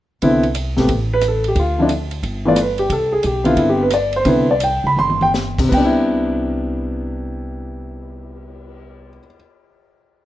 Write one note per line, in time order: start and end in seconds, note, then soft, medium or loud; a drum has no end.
0.22 0.74 C2 medium
0.22 0.42 D3 medium
0.22 0.42 B3 medium
0.22 0.43 C4 medium
0.22 0.43 E4 medium
0.22 kick soft
0.22 ride medium
0.43 ride soft
0.55 hi-hat pedal medium
0.55 ride medium
0.77 0.88 G#1 medium
0.77 0.88 C3 medium
0.77 0.88 A3 medium
0.77 0.89 B3 medium
0.77 0.89 G4 medium
0.77 snare soft
0.89 1.53 A1 medium
0.89 kick soft
0.89 ride medium
1.14 1.24 B4 medium
1.21 cross-stick soft
1.21 hi-hat pedal medium
1.21 ride medium
1.28 1.47 A4 medium
1.44 ride soft
1.48 1.58 G4 medium
1.56 2.19 D2 medium
1.56 1.79 F4 medium
1.56 kick soft
1.56 ride medium
1.78 1.89 D3 medium
1.78 1.89 F3 medium
1.78 1.90 C4 medium
1.78 1.88 D4 medium
1.78 1.90 E4 medium
1.89 hi-hat pedal medium
1.89 ride medium
2.11 ride soft
2.23 2.86 G1 medium
2.23 kick soft
2.23 ride soft
2.45 2.56 E3 medium
2.45 2.56 A3 medium
2.45 2.56 B3 medium
2.45 2.56 F4 medium
2.45 2.58 D5 medium
2.56 cross-stick medium
2.56 hi-hat pedal medium
2.56 ride medium
2.61 2.80 B4 medium
2.78 2.90 G4 medium
2.78 ride soft
2.90 3.21 C2 medium
2.90 3.12 A4 medium
2.90 kick soft
2.90 ride medium
3.12 3.23 G#4 medium
3.23 3.55 B1 medium
3.23 3.46 G4 medium
3.23 hi-hat pedal medium
3.23 ride medium
3.44 3.88 D3 medium
3.44 3.88 B3 medium
3.44 3.89 C4 medium
3.44 3.57 E4 medium
3.44 3.57 F4 medium
3.44 ride soft
3.57 4.22 G1 medium
3.57 3.69 E4 medium
3.57 kick soft
3.57 ride medium
3.70 3.80 G4 medium
3.83 3.92 B4 medium
3.90 4.14 D5 medium
3.90 cross-stick medium
3.90 hi-hat pedal medium
3.90 ride medium
4.13 4.27 C5 medium
4.13 ride soft
4.25 4.80 C2 medium
4.25 4.46 D3 medium
4.25 4.46 B3 medium
4.25 4.46 C4 medium
4.25 4.46 E4 medium
4.25 4.49 B4 medium
4.25 kick soft
4.25 ride medium
4.51 4.62 D5 medium
4.60 4.85 G5 medium
4.60 hi-hat pedal medium
4.60 ride medium
4.84 4.96 C#2 medium
4.84 4.98 B5 medium
4.96 5.69 G1 medium
4.96 5.21 C6 loud
4.96 mid tom soft
5.10 mid tom medium
5.21 5.30 G5 medium
5.21 mid tom medium
5.34 snare soft
5.34 hi-hat pedal medium
5.58 9.09 C3 medium
5.58 kick medium
5.58 crash medium
5.69 9.17 C2 medium
5.69 9.18 B3 medium
5.69 kick medium
5.69 crash medium
5.74 9.26 D4 medium
5.74 9.19 G5 medium
5.85 9.34 E4 medium
5.98 cymbal swell soft